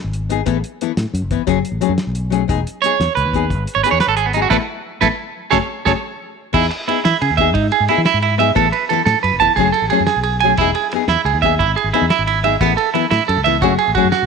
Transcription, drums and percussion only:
0.13 closed hi-hat soft
0.30 closed hi-hat medium
0.46 kick medium
0.46 closed hi-hat medium
0.64 closed hi-hat medium
0.81 closed hi-hat medium
0.97 snare loud
0.97 closed hi-hat medium
1.15 closed hi-hat medium
1.31 kick medium
1.31 closed hi-hat soft
1.47 kick medium
1.47 closed hi-hat medium
1.65 closed hi-hat medium
1.82 closed hi-hat medium
1.98 snare medium
1.98 closed hi-hat medium
2.15 closed hi-hat medium
2.32 closed hi-hat medium
2.49 kick loud
2.49 closed hi-hat medium
2.67 closed hi-hat medium
2.84 closed hi-hat medium
3.01 snare loud
3.01 closed hi-hat medium
3.17 closed hi-hat soft
3.33 kick medium
3.33 closed hi-hat medium
3.50 kick loud
3.50 closed hi-hat medium
3.67 closed hi-hat medium
3.84 closed hi-hat soft
4.00 snare medium
4.00 closed hi-hat medium
4.17 closed hi-hat medium
4.33 closed hi-hat soft
4.50 kick medium
4.50 snare medium
5.02 kick medium
5.02 snare medium
5.53 kick medium
5.53 snare medium
5.86 kick medium
5.86 snare medium
6.54 kick medium
6.54 crash medium
6.71 ride medium
6.89 ride medium
7.05 snare loud
7.05 ride medium
7.22 ride medium
7.38 kick medium
7.38 ride medium
7.55 kick loud
7.55 ride medium
7.72 ride medium
7.88 ride medium
8.05 snare medium
8.05 ride medium
8.22 ride medium
8.40 ride medium
8.56 kick medium
8.56 ride medium
8.73 ride medium
8.90 ride medium
9.07 snare loud
9.07 ride medium
9.24 ride medium
9.40 kick medium
9.40 snare soft
9.40 ride medium
9.57 kick medium
9.57 ride medium
9.74 ride medium
9.90 ride medium
10.07 snare loud
10.07 ride medium
10.23 ride medium
10.40 ride medium
10.57 kick medium
10.57 ride medium
10.75 ride medium
10.91 ride medium
11.08 snare loud
11.08 ride medium
11.26 ride medium
11.43 kick medium
11.43 snare soft
11.43 ride medium
11.60 kick medium
11.60 ride medium
11.77 ride medium
11.94 ride medium
12.10 snare loud
12.10 ride medium
12.27 ride medium
12.44 ride medium
12.61 kick loud
12.61 ride medium
12.78 ride medium
12.95 ride medium
13.11 snare loud
13.11 ride medium
13.29 ride medium
13.46 ride medium
13.62 kick medium
13.62 ride medium
13.79 ride medium
13.95 kick medium
13.95 ride medium
14.12 snare medium
14.12 ride medium

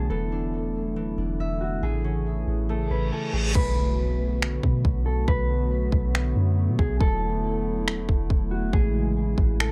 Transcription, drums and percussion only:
3.55 kick loud
3.55 crash loud
4.42 finger snap loud
4.63 kick loud
4.85 kick loud
5.28 kick loud
5.92 kick loud
6.15 finger snap loud
6.79 kick loud
7.01 kick loud
7.88 finger snap loud
8.09 kick medium
8.30 kick loud
8.73 kick loud
9.38 kick loud
9.60 finger snap loud

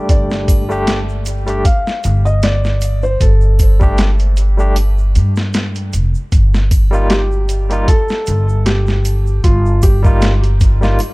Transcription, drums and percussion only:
0.09 kick loud
0.09 closed hi-hat medium
0.09 shaker soft
0.31 snare soft
0.31 shaker soft
0.48 kick medium
0.48 closed hi-hat medium
0.48 triangle medium
0.48 shaker medium
0.71 shaker soft
0.87 snare loud
0.87 closed hi-hat medium
0.87 shaker soft
1.09 shaker soft
1.26 closed hi-hat medium
1.26 shaker medium
1.47 closed hi-hat soft
1.47 shaker soft
1.65 kick loud
1.65 closed hi-hat medium
1.65 shaker medium
1.87 snare soft
1.87 shaker soft
2.04 closed hi-hat medium
2.04 shaker medium
2.26 shaker soft
2.42 snare loud
2.42 closed hi-hat medium
2.42 shaker soft
2.64 snare soft
2.64 shaker soft
2.81 closed hi-hat medium
2.81 triangle medium
2.81 shaker medium
3.03 shaker soft
3.21 kick loud
3.21 closed hi-hat medium
3.21 shaker soft
3.41 shaker soft
3.59 kick medium
3.59 closed hi-hat medium
3.59 triangle medium
3.59 shaker medium
3.81 kick medium
3.81 shaker soft
3.98 snare loud
3.98 closed hi-hat medium
3.98 shaker soft
4.19 closed hi-hat soft
4.19 shaker soft
4.37 closed hi-hat medium
4.37 shaker medium
4.59 shaker soft
4.76 closed hi-hat medium
4.76 triangle medium
4.76 shaker soft
4.98 shaker soft
5.15 closed hi-hat medium
5.15 shaker medium
5.36 snare medium
5.36 shaker soft
5.54 snare loud
5.54 closed hi-hat medium
5.54 shaker soft
5.75 closed hi-hat soft
5.75 shaker soft
5.93 closed hi-hat medium
5.93 shaker medium
6.15 shaker soft
6.32 kick loud
6.32 closed hi-hat medium
6.32 shaker medium
6.54 snare soft
6.54 shaker soft
6.71 kick medium
6.71 closed hi-hat medium
6.71 triangle medium
6.71 shaker medium
6.93 shaker soft
7.10 snare loud
7.10 closed hi-hat medium
7.10 shaker soft
7.32 shaker soft
7.49 closed hi-hat medium
7.49 shaker medium
7.71 closed hi-hat soft
7.71 shaker soft
7.88 kick loud
7.88 closed hi-hat medium
7.88 shaker soft
8.09 snare soft
8.09 shaker soft
8.27 closed hi-hat medium
8.27 shaker medium
8.49 shaker soft
8.66 snare loud
8.66 closed hi-hat medium
8.66 shaker soft
8.87 snare soft
8.87 shaker soft
9.05 closed hi-hat medium
9.05 triangle medium
9.05 shaker medium
9.27 shaker soft
9.44 kick loud
9.44 closed hi-hat medium
9.44 shaker soft
9.66 shaker soft
9.82 kick medium
9.82 closed hi-hat medium
9.82 triangle medium
9.82 shaker medium
10.04 kick medium
10.04 shaker soft
10.21 snare loud
10.21 closed hi-hat medium
10.21 shaker medium
10.44 closed hi-hat soft
10.44 shaker soft
10.60 kick medium
10.60 closed hi-hat medium
10.60 shaker medium
10.83 snare soft
10.83 shaker soft
10.99 closed hi-hat medium
10.99 triangle medium
10.99 shaker soft

